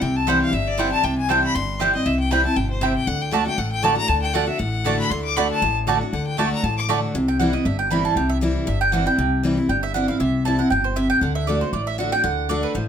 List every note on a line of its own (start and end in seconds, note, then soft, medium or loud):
0.01 0.41 C2 medium
0.01 0.50 C3 loud
0.01 0.18 G5 medium
0.16 0.29 A5 loud
0.27 0.51 E3 medium
0.27 0.52 G3 medium
0.27 0.37 C4 medium
0.27 0.52 C4 medium
0.27 0.37 E4 loud
0.27 0.53 E4 loud
0.27 0.38 C5 loud
0.27 0.41 F#5 medium
0.27 0.38 G5 loud
0.41 0.55 F5 loud
0.53 0.92 G1 medium
0.53 1.01 G2 medium
0.53 0.69 E5 medium
0.68 0.81 D5 loud
0.78 1.02 E3 loud
0.78 1.03 G3 medium
0.78 0.88 C4 medium
0.78 1.03 C4 medium
0.78 0.88 E4 loud
0.78 1.03 E4 loud
0.78 0.89 C5 medium
0.78 0.91 F#5 loud
0.78 0.89 G5 loud
0.92 1.06 A5 loud
1.03 1.43 C2 medium
1.03 1.52 C3 loud
1.03 1.17 G5 medium
1.18 1.31 G#5 loud
1.29 1.53 E3 medium
1.29 1.54 G3 medium
1.29 1.39 C4 medium
1.29 1.54 C4 medium
1.29 1.39 E4 medium
1.29 1.55 E4 loud
1.29 1.39 C5 loud
1.29 1.40 G5 loud
1.29 1.43 A5 medium
1.44 1.56 B5 loud
1.55 1.94 G1 medium
1.55 2.04 G2 loud
1.55 1.80 C6 loud
1.80 1.93 E3 medium
1.80 1.94 G3 medium
1.80 1.90 C4 medium
1.80 1.94 C4 medium
1.80 1.90 E4 medium
1.80 1.92 E4 loud
1.80 1.90 C5 loud
1.80 1.90 G5 loud
1.93 2.06 C4 soft
1.93 2.05 E4 medium
1.93 2.08 D#5 loud
2.06 2.45 C2 medium
2.06 2.54 C3 medium
2.06 2.19 E5 medium
2.20 2.32 G5 loud
2.31 2.44 E3 medium
2.31 2.45 G3 medium
2.31 2.41 C4 medium
2.31 2.45 C4 medium
2.31 2.41 E4 medium
2.31 2.43 E4 loud
2.31 2.41 C5 medium
2.31 2.42 G5 medium
2.31 2.45 B5 medium
2.44 2.57 C4 medium
2.44 2.56 E4 medium
2.44 2.58 A5 loud
2.56 2.96 G1 medium
2.56 2.81 B2 medium
2.56 2.69 G5 medium
2.70 2.83 C5 medium
2.81 3.06 C3 medium
2.81 2.92 C4 medium
2.81 2.92 E4 medium
2.81 2.92 C5 medium
2.81 2.95 E5 medium
2.81 2.92 G5 loud
2.96 3.09 G5 loud
3.07 3.47 D2 medium
3.07 3.30 D3 medium
3.07 3.23 F#5 loud
3.22 3.34 G5 medium
3.31 3.45 D3 medium
3.31 3.46 A3 medium
3.31 3.43 A3 loud
3.31 3.46 D4 loud
3.31 3.43 F#4 medium
3.31 3.44 F#4 medium
3.31 3.43 D5 loud
3.31 3.46 A5 loud
3.31 3.43 A5 loud
3.46 3.58 D4 soft
3.46 3.57 F#4 medium
3.46 3.60 G5 loud
3.58 3.97 A1 medium
3.58 4.07 A2 medium
3.58 3.71 F#5 loud
3.72 3.85 G5 loud
3.83 3.96 D3 loud
3.83 3.93 A3 medium
3.83 3.97 A3 medium
3.83 3.97 D4 loud
3.83 3.94 F#4 medium
3.83 3.95 F#4 medium
3.83 3.94 D5 loud
3.83 3.96 A5 loud
3.83 3.94 A5 loud
3.97 4.09 D4 soft
3.97 4.08 F#4 medium
3.97 4.10 A#5 loud
4.08 4.48 D2 medium
4.08 4.32 D3 loud
4.08 4.21 A5 loud
4.22 4.35 G5 loud
4.33 4.47 D3 medium
4.33 4.44 A3 medium
4.33 4.48 A3 loud
4.33 4.48 D4 medium
4.33 4.45 F#4 loud
4.33 4.46 F#4 loud
4.33 4.45 D5 loud
4.33 4.49 F#5 medium
4.33 4.45 A5 loud
4.47 4.60 D4 soft
4.47 4.59 F#4 medium
4.47 4.60 E5 loud
4.59 4.99 A1 medium
4.59 5.08 A2 medium
4.59 4.99 F#5 loud
4.84 5.09 D3 medium
4.84 4.95 A3 medium
4.84 5.10 A3 loud
4.84 5.10 D4 loud
4.84 4.95 F#4 medium
4.84 5.10 F#4 loud
4.84 4.96 D5 loud
4.84 4.96 A5 loud
4.99 5.12 B5 loud
5.10 5.50 D2 medium
5.10 5.35 D3 loud
5.10 5.24 C6 loud
5.25 5.38 D6 loud
5.36 5.61 D3 loud
5.36 5.46 A3 loud
5.36 5.61 A3 medium
5.36 5.62 D4 loud
5.36 5.47 F#4 loud
5.36 5.62 F#4 medium
5.36 5.47 D5 loud
5.36 5.47 A5 loud
5.36 5.50 B5 medium
5.51 5.74 A5 loud
5.62 6.01 A1 loud
5.62 6.11 A2 medium
5.87 6.00 D3 loud
5.87 5.97 A3 loud
5.87 6.01 A3 loud
5.87 6.01 D4 loud
5.87 5.97 F#4 loud
5.87 6.00 F#4 loud
5.87 5.98 D5 loud
5.87 5.98 A5 loud
6.01 6.13 D4 medium
6.01 6.12 F#4 medium
6.13 6.52 D2 medium
6.13 6.36 D3 medium
6.13 6.26 F#5 medium
6.27 6.40 G5 loud
6.37 6.62 D3 medium
6.37 6.48 A3 loud
6.37 6.63 A3 medium
6.37 6.63 D4 medium
6.37 6.48 F#4 loud
6.37 6.63 F#4 loud
6.37 6.49 D5 loud
6.37 6.52 A5 medium
6.37 6.49 A5 loud
6.52 6.65 A#5 loud
6.63 7.03 A1 loud
6.63 7.12 A2 medium
6.63 6.77 A5 medium
6.77 6.84 D6 loud
6.89 7.13 D3 medium
6.89 6.99 A3 loud
6.89 7.14 A3 loud
6.89 7.14 D4 loud
6.89 6.99 F#4 medium
6.89 7.14 F#4 loud
6.89 6.99 D5 loud
6.89 6.99 A5 loud
7.15 7.54 C2 medium
7.15 7.63 C3 loud
7.28 7.39 G5 loud
7.39 7.53 E3 medium
7.39 7.54 G3 loud
7.39 7.54 C4 medium
7.39 7.52 E4 loud
7.39 7.53 F#5 medium
7.53 7.66 C4 soft
7.53 7.65 E4 medium
7.53 7.65 D#5 medium
7.65 8.05 G1 loud
7.65 8.14 G2 medium
7.65 7.78 E5 medium
7.79 7.90 G5 medium
7.90 8.15 E3 medium
7.90 8.16 G3 medium
7.90 8.16 C4 loud
7.90 8.16 E4 loud
7.90 8.04 B5 medium
8.05 8.16 A5 medium
8.16 8.56 C2 medium
8.16 8.65 C3 medium
8.16 8.29 G5 medium
8.29 8.37 E5 loud
8.41 8.66 E3 medium
8.41 8.66 G3 medium
8.41 8.67 C4 loud
8.41 8.67 E4 loud
8.67 9.07 G1 medium
8.67 9.16 G2 loud
8.67 8.81 E5 medium
8.81 8.93 G5 loud
8.92 9.06 E3 loud
8.92 9.06 G3 medium
8.92 9.07 C4 loud
8.92 9.05 E4 medium
8.92 9.06 F#5 medium
9.06 9.19 C4 soft
9.06 9.18 E4 medium
9.06 9.41 G5 loud
9.18 9.58 C2 medium
9.18 9.67 C3 medium
9.43 9.57 E3 medium
9.43 9.57 G3 medium
9.43 9.58 C4 loud
9.43 9.56 E4 medium
9.57 9.70 C4 soft
9.57 9.69 E4 medium
9.69 10.08 G1 medium
9.69 10.18 G2 medium
9.69 9.83 G5 medium
9.83 9.94 E5 loud
9.94 10.08 E3 loud
9.94 10.09 G3 medium
9.94 10.09 C4 loud
9.94 10.07 E4 medium
9.94 10.08 F#5 loud
10.08 10.21 C4 medium
10.08 10.20 E4 medium
10.08 10.19 F5 loud
10.20 10.60 C2 medium
10.20 10.69 C3 loud
10.20 10.44 E5 medium
10.45 10.59 E3 medium
10.45 10.59 G3 medium
10.45 10.60 C4 medium
10.45 10.58 E4 loud
10.45 10.58 A5 loud
10.59 10.72 C4 medium
10.59 10.71 E4 medium
10.59 10.70 F#5 medium
10.70 11.11 G1 medium
10.70 10.96 B2 medium
10.70 10.84 G5 medium
10.84 10.96 C5 medium
10.96 11.21 C3 loud
10.96 11.09 E5 medium
11.10 11.21 G5 loud
11.21 11.61 D2 medium
11.21 11.46 D3 medium
11.21 11.35 F#5 medium
11.35 11.47 E5 loud
11.47 11.61 D3 medium
11.47 11.61 A3 medium
11.47 11.62 D4 loud
11.47 11.60 F#4 loud
11.47 11.61 D5 medium
11.61 11.74 D4 soft
11.61 11.73 F#4 medium
11.61 11.73 C5 medium
11.73 12.12 A1 medium
11.73 12.22 A2 medium
11.73 11.87 D5 medium
11.87 11.98 E5 loud
11.98 12.12 D3 medium
11.98 12.12 A3 medium
11.98 12.13 D4 medium
11.98 12.11 F#4 loud
11.98 12.12 F#5 medium
12.12 12.25 D4 soft
12.12 12.23 F#4 medium
12.12 12.24 G5 loud
12.24 12.64 D2 medium
12.24 12.48 D3 loud
12.24 12.48 F#5 medium
12.49 12.74 D3 medium
12.49 12.74 A3 loud
12.49 12.74 D4 loud
12.49 12.75 F#4 loud
12.49 12.63 D5 medium
12.63 12.74 B4 medium
12.75 12.88 A1 medium
12.75 12.88 A2 medium
12.75 12.83 C5 medium